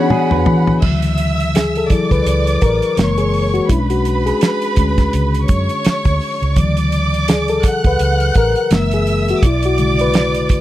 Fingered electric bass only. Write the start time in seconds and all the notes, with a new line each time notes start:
0.11 muted fingered electric bass stroke
0.32 E2
0.47 E3
0.83 D2
1.91 muted fingered electric bass stroke
2.11 C#2
2.26 C#2
2.63 A1
2.98 F#1
3.70 B1
4.77 D2
5.14 C#2
5.50 F#2
5.86 muted fingered electric bass stroke
6.06 D2
6.42 C#2
6.57 D2
7.64 muted fingered electric bass stroke
7.85 C#2
8.00 C#2
8.36 A1
8.71 F#1
9.43 B1
10.50 muted fingered electric bass stroke